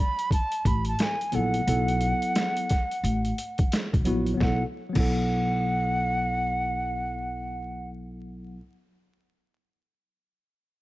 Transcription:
0.00 0.32 B5 loud
0.19 closed hi-hat medium
0.31 0.69 A5 loud
0.31 kick medium
0.31 closed hi-hat medium
0.52 closed hi-hat medium
0.65 0.93 A1 medium
0.65 0.87 B5 loud
0.65 kick medium
0.65 closed hi-hat medium
0.85 1.04 A5 medium
0.85 closed hi-hat medium
0.99 1.30 G#5 loud
0.99 snare loud
0.99 closed hi-hat medium
1.21 closed hi-hat soft
1.30 1.61 A#1 medium
1.30 1.60 F#3 medium
1.30 1.60 B3 medium
1.30 1.37 G#5 medium
1.30 closed hi-hat medium
1.34 1.61 E4 medium
1.34 1.61 A4 medium
1.34 3.73 F#5 loud
1.54 closed hi-hat medium
1.67 2.11 B1 loud
1.67 2.66 F#3 medium
1.67 2.67 B3 medium
1.67 2.67 E4 medium
1.67 2.67 A4 medium
1.67 closed hi-hat loud
1.88 closed hi-hat medium
2.01 closed hi-hat medium
2.22 closed hi-hat soft
2.35 snare loud
2.35 closed hi-hat medium
2.57 closed hi-hat medium
2.69 kick medium
2.69 snare soft
2.69 closed hi-hat medium
2.91 closed hi-hat medium
3.04 3.31 A1 medium
3.04 closed hi-hat medium
3.25 closed hi-hat medium
3.38 closed hi-hat medium
3.58 kick loud
3.58 closed hi-hat medium
3.72 snare loud
3.72 closed hi-hat medium
3.94 4.04 B1 medium
3.94 kick medium
3.94 closed hi-hat soft
4.05 4.34 A#1 medium
4.05 4.32 F#3 medium
4.05 4.33 B3 medium
4.05 4.33 E4 medium
4.05 4.34 F#4 loud
4.05 closed hi-hat medium
4.26 closed hi-hat medium
4.34 4.59 F#3 medium
4.34 4.61 B3 medium
4.40 4.62 B1 medium
4.40 4.63 E4 medium
4.40 4.63 F#5 medium
4.40 kick loud
4.40 snare medium
4.45 4.65 A4 medium
4.89 8.56 F#3 medium
4.89 8.58 B3 medium
4.95 8.59 B1 loud
4.95 8.60 E4 medium
4.95 7.90 F#5 loud
4.95 kick loud
4.95 crash medium
5.00 8.62 A4 medium

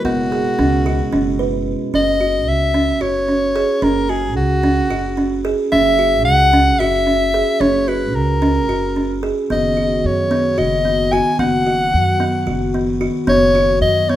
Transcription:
0.00 1.91 G#3 medium
0.04 0.45 F#1 medium
0.04 1.92 B2 medium
0.04 0.21 B3 medium
0.04 1.92 E4 medium
0.04 1.63 F#4 medium
0.32 0.48 G#4 medium
0.59 1.00 C#2 medium
0.59 0.75 C#4 medium
0.86 1.02 F#4 medium
1.12 1.74 F#1 medium
1.12 1.29 C#4 medium
1.39 1.72 B4 medium
1.94 2.47 F#1 medium
1.94 2.10 C#4 medium
1.94 2.49 D#5 medium
2.20 2.53 F#4 medium
2.47 3.01 C#2 medium
2.47 3.03 E5 loud
2.74 2.90 C#4 medium
3.01 3.62 F#1 medium
3.01 3.17 F#4 medium
3.01 3.85 C#5 medium
3.28 3.45 C#4 medium
3.56 3.72 G#4 medium
3.82 4.37 F#1 medium
3.82 3.99 C#4 medium
3.82 4.11 A#4 medium
4.09 4.42 F#4 medium
4.09 4.35 G#4 medium
4.36 4.91 C#2 medium
4.36 5.41 F#4 medium
4.63 4.80 C#4 medium
4.90 5.52 F#1 medium
4.90 5.07 F#4 medium
5.17 5.34 C#4 medium
5.45 5.61 G#4 medium
5.72 6.26 F#1 medium
5.72 5.88 C#4 medium
5.72 6.22 E5 loud
5.99 6.31 F#4 medium
6.25 6.81 C#2 medium
6.25 6.81 F#5 loud
6.53 6.69 C#4 medium
6.79 7.41 F#1 medium
6.79 6.96 F#4 medium
6.79 7.62 E5 loud
7.07 7.23 C#4 medium
7.34 7.50 G#4 medium
7.60 8.15 F#1 medium
7.60 7.77 C#4 medium
7.60 7.89 C#5 medium
7.88 8.20 F#4 medium
7.88 8.17 B4 medium
8.15 8.68 C#2 medium
8.15 9.23 A#4 medium
8.42 8.58 C#4 medium
8.68 9.30 F#1 medium
8.68 8.85 F#4 medium
8.96 9.12 C#4 medium
9.23 9.39 G#4 medium
9.49 10.06 F#1 medium
9.49 14.16 D#3 medium
9.49 14.16 B3 medium
9.49 9.66 B3 medium
9.49 14.16 F#4 medium
9.49 10.08 D#5 medium
9.77 10.09 F#4 medium
10.04 10.60 F#2 medium
10.04 10.60 C#5 medium
10.31 10.47 B3 medium
10.58 11.19 F#1 medium
10.58 10.74 F#4 medium
10.58 11.14 D#5 medium
10.85 11.01 B3 medium
11.12 11.29 F#4 medium
11.12 11.39 G#5 loud
11.39 11.95 F#1 medium
11.39 11.55 B3 medium
11.39 12.97 F#5 medium
11.66 11.98 F#4 medium
11.94 12.48 F#2 medium
12.20 12.36 B3 medium
12.47 13.08 F#1 medium
12.47 12.63 F#4 medium
12.74 12.90 B3 medium
13.01 13.17 F#4 medium
13.27 13.82 F#1 medium
13.27 13.44 B3 medium
13.27 13.78 C#5 loud
13.55 13.87 F#4 medium
13.81 14.16 F#2 medium
13.81 14.11 D#5 medium
14.09 14.16 B3 medium
14.09 14.16 C#5 loud

